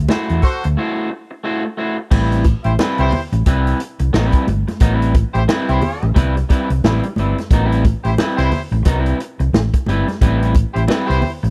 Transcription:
0.09 A3 E4 F#4 C5, snare, high conga
0.29 E2, closed hi-hat
0.42 F#4 A4 C5, muted clean electric guitar stroke, kick, open hi-hat
0.64 D2, muted clean electric guitar stroke, closed hi-hat
0.77 A3 E4 F#4 C5
1.11 muted clean electric guitar stroke
1.31 muted clean electric guitar stroke
1.44 A3 E4 F#4 C5
1.65 muted clean electric guitar stroke
1.77 A3 E4 F#4 C5
1.98 muted clean electric guitar stroke
2.11 A1 G3 C4 E4 B4, kick, crash
2.32 closed hi-hat
2.44 kick, closed hi-hat, muted conga
2.64 A1 E4 G4 C5, muted clean electric guitar stroke, closed hi-hat
2.79 G3 C4 E4 B4, snare, high conga
2.98 C2 E4 G4 C5, closed hi-hat
3.11 muted clean electric guitar stroke, open hi-hat, low conga
3.32 A1, muted clean electric guitar stroke, closed hi-hat
3.46 C2 G3 C4 E4 B4, kick, closed hi-hat, muted conga
3.67 closed hi-hat
3.80 muted clean electric guitar stroke, closed hi-hat
3.99 C2, muted clean electric guitar stroke, closed hi-hat
4.13 A1 F#3 B3 D#4 A#4, snare, high conga
4.26 G3 C4 E4 B4
4.32 kick, closed hi-hat
4.47 G1, muted clean electric guitar stroke, closed hi-hat, high conga
4.68 muted clean electric guitar stroke, snare, closed hi-hat, high conga
4.80 A1 F#3 B3 D#4 A#4, kick, closed hi-hat
4.94 G3 C4 E4 B4
5.02 closed hi-hat
5.14 kick, closed hi-hat, muted conga
5.33 A1 E4 G4 C5, muted clean electric guitar stroke, closed hi-hat
5.48 G3 C4 E4 B4, snare, high conga
5.68 C2 E4 G4 C5, closed hi-hat
5.81 muted clean electric guitar stroke, open hi-hat, low conga
6.02 A1, muted clean electric guitar stroke, closed hi-hat
6.14 C2 G3 C4 E4 B4, kick, closed hi-hat, muted conga, low conga
6.36 muted clean electric guitar stroke, closed hi-hat
6.49 G3 C4 E4 B4, kick, closed hi-hat, muted conga
6.70 C2, muted clean electric guitar stroke, closed hi-hat
6.84 A1 G3 C4 E4 B4, snare, high conga
7.03 muted clean electric guitar stroke, closed hi-hat
7.16 G1 G3 C4 E4 B4, closed hi-hat, high conga
7.38 muted clean electric guitar stroke, snare, closed hi-hat, high conga
7.51 A1 F#3 B3 D#4 A#4, kick, closed hi-hat
7.66 G3 C4 E4 B4
7.72 closed hi-hat
7.84 kick, closed hi-hat, muted conga
8.04 A1 E4 G4 C5, muted clean electric guitar stroke, closed hi-hat
8.18 G3 C4 E4 B4, snare, high conga
8.37 C2 E4 G4 C5, closed hi-hat
8.51 muted clean electric guitar stroke, open hi-hat, low conga
8.71 A1, muted clean electric guitar stroke, closed hi-hat
8.85 C2 F#3 B3 D#4 A#4, kick, closed hi-hat, muted conga
8.98 G3 C4 E4 B4
9.06 closed hi-hat
9.20 muted clean electric guitar stroke, closed hi-hat
9.39 C2, muted clean electric guitar stroke, closed hi-hat
9.53 A1, snare, high conga
9.74 muted clean electric guitar stroke, kick, closed hi-hat
9.86 G1 G3 C4 E4 B4, closed hi-hat, high conga
10.08 muted clean electric guitar stroke, snare, closed hi-hat, high conga
10.21 A1 G3 C4 E4 B4, kick, closed hi-hat
10.43 closed hi-hat
10.55 kick, closed hi-hat, muted conga
10.73 A1 E4 G4 C5, muted clean electric guitar stroke, closed hi-hat
10.88 G3 C4 E4 B4, snare, high conga
11.07 C2 E4 G4 C5, closed hi-hat
11.22 muted clean electric guitar stroke, open hi-hat, low conga
11.43 A1, muted clean electric guitar stroke, closed hi-hat

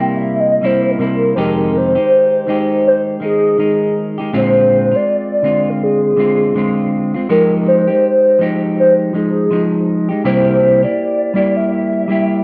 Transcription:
Already playing: C3 G3 A#3 E4
0.16 E5
0.40 D#5
0.61 C3 G3 A#3 E4
0.66 C5
0.91 A#4
0.99 C3 G3 A#3 E4
1.35 F2 C3 D#3 G#3 D#4 G4 C5
1.40 A#4
1.77 C5
1.95 D#3 G#3 D#4 G4
2.47 D#3 G#3 D#4 G4
2.87 C5
3.20 D#3 G#3 D#4
3.25 G#4
3.58 D#3 G#3 D#4
4.18 D#3 G#3 D#4 G4
4.33 A#2 D3 G#3 C4 F4
4.37 C5
4.91 G#3 C4 F4
4.95 D5
5.42 D3 G#3 C4 F4
5.70 A#4
5.83 G#4
6.17 D3 G#3 C4 F4
6.55 D3 G#3 C4 F4
7.14 G#3 C4 F4
7.29 F3 G#3 D#4 G4 A#4
7.68 C5
7.87 G#3 D#4 G4
8.39 F3 G#3 D#4 G4
8.79 C5
9.13 F3 G#3 D#4 G#4
9.51 F3 G#3 D#4
10.09 G#3 D#4 G4
10.24 C3 G3 A#3 E4 G4 C5
10.83 A#3 E4 G4 D5
11.34 G3 A#3 E4 G4
11.56 E5
11.71 E5
12.08 G3 A#3 E4 G4

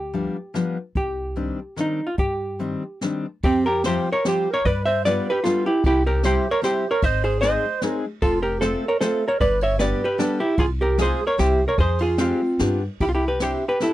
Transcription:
Already playing: D2 G4
0.13 F3 G3 B3 D4, closed hi-hat
0.54 F3 G3 B3 D4, snare, closed hi-hat
0.95 C2 G4, kick, closed hi-hat
1.36 D#3 G3 C4 D4, closed hi-hat
1.76 D#3 G3 C4 D4, snare, closed hi-hat
1.80 D#4
2.07 F4
2.17 G2 G4, kick, closed hi-hat
2.59 D#3 G3 C4 D4, closed hi-hat
3.01 D#3 G3 C4 D4, snare, closed hi-hat
3.43 F2 C4 G4, kick, ride
3.66 G4 A#4
3.84 F3 G3 C4 F4 G4 C5, snare, ride
4.11 A#4 C#5
4.24 F3 G3 C4 F4 G4 C5, snare, ride
4.50 A#4 C#5
4.65 G2 B4 D5, kick, ride
4.85 C5 E5, ride
5.05 G3 B3 D4 F4 B4 D5, snare, ride
5.30 G4 B4
5.44 G3 B3 D4 F4 A4, snare, ride
5.66 E4 G4
5.84 C2 E4 G4, kick, ride
6.06 G4 A#4
6.23 G3 C4 E4 G4 C5, snare, ride
6.51 A#4 C#5
6.62 G3 C4 E4 G4 C5, snare, ride
6.91 A#4 C#5
7.02 G#1 C5 D#5, kick, ride
7.24 G#4 C5, ride
7.41 G#3 C4 D#4 G#4 C5 D#5, snare, ride
7.81 G#3 C4 D#4 G#4, snare, ride
7.86 A#4 C#5
8.22 F1 F4 A4, kick, ride
8.42 G4 A#4
8.61 A3 C4 F4 A4 C5, snare, ride
8.88 A#4 C#5
9.01 A3 C4 F4 A4 C5, snare, ride
9.26 A#4 C#5
9.40 G1 B4 D5, kick, ride
9.61 C#5 E5, ride
9.79 G3 B3 D4 G4 B4 D5, snare, ride
10.04 G4 B4
10.18 G3 B3 D4 G4 A4, snare, ride
10.22 D4
10.40 E4 G4
10.57 C2 F4 G#4, kick, ride
10.81 G4 A#4
10.98 G#3 C4 F4 G#4, snare, ride
11.02 C5
11.27 A#4 C#5
11.38 C2 G3 C4 E4 G4 C5, snare, ride
11.67 A#4 C#5
11.78 F2 G#4 C5, kick, ride
11.99 F4 G#4, ride
12.18 G#3 C4 F4 G4, snare, ride
12.22 C4
12.59 G2 B3 D4 F4 G4, snare, ride
13.00 C2 E4 G4, kick, ride
13.09 F4
13.15 E4 G4
13.28 G4 B4
13.40 C4 D4 E4 G4 C5, snare, ride
13.68 G4 B4
13.80 C4 D4 E4 G4 A4, snare, ride

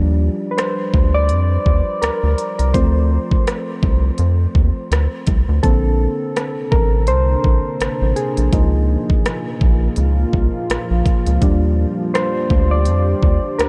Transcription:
Already playing: D#2 F3 G3 D4
0.51 B4
0.58 C5, cross-stick, closed hi-hat
0.94 D2, kick
1.14 D5
1.29 F2, closed hi-hat
1.66 D#2, kick
2.02 D2 A#4, cross-stick, closed hi-hat
2.23 D2
2.38 closed hi-hat
2.59 C2 A#4, closed hi-hat
2.74 D2 F3 A3 C4 C5, kick, closed hi-hat
3.31 kick
3.47 cross-stick, closed hi-hat
3.83 C2, kick
4.18 F2, closed hi-hat
4.55 D#2, kick
4.91 D2, cross-stick, closed hi-hat
5.27 C2, kick, closed hi-hat
5.49 D2
5.63 A#1 C3 D3 A#3 C4 D4 A4, kick, closed hi-hat
6.36 cross-stick, closed hi-hat
6.72 A1 A#4, kick
7.07 C2 C5, closed hi-hat
7.44 A#1, kick
7.81 A1, cross-stick, closed hi-hat
8.02 A1
8.16 G#4, closed hi-hat
8.37 A#1, closed hi-hat
8.53 C#2 F3 A#3 D#4 F4, kick, closed hi-hat
9.10 kick
9.26 cross-stick, closed hi-hat
9.61 A#1, kick
9.96 C#2, closed hi-hat
10.33 C2, kick
10.70 A#1, cross-stick, closed hi-hat
10.91 A#1
11.06 kick, closed hi-hat
11.26 C#2, closed hi-hat
11.42 D#2 F3 G3 D4 G4, kick, closed hi-hat
12.14 C5, cross-stick, closed hi-hat
12.50 D2, kick
12.71 D5
12.85 F2, closed hi-hat
13.23 D#2, kick
13.59 D2 A#4, cross-stick, closed hi-hat

